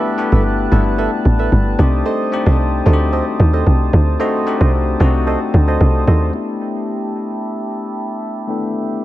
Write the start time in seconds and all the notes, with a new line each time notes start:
Already playing: G3 A3 B3 D4 E4 F#4 G4 A4 B4 E5 A5 F#6
0.18 A3 B3 D4 E4 G4
0.32 G1 A4 B4 E5
0.71 G1 A3 B3 D4 E4 A4 B4 E5
0.98 A4 B4 E5
1.25 A1
1.39 A4 B4 E5
1.52 G1
1.78 C2 A3 C4 D4 D#4 G4 C5 D#6
2.06 A4 C5 D#5
2.32 A3 C4 D4 D#4 G4
2.46 C2 A4 C5 D#5
2.86 D2 A3 C4 D4 D#4 F#4 A4 C5 D#5
2.93 G4
3.13 A4 C5 D#5
3.40 D#2
3.53 A4 C5 D#5
3.67 C2
3.93 D2
4.20 A3 C4 D4 D#4 F#4 A4 C5 D#5
4.46 A3 C4 D4 D#4 G4
4.61 C2 A4 C5 D#5
5.00 C2 A3 C4 D4 D#4 F#4 A4 C5 D#5
5.27 A4 C5 D#5
5.54 D2
5.68 A4 C5 D#5
5.81 C2
6.07 D#2 A4 C5 D#5
6.33 A3 B3 D4 E4 G4 E5 A5 B5
8.47 A3 B3 D4 E4 A4 G5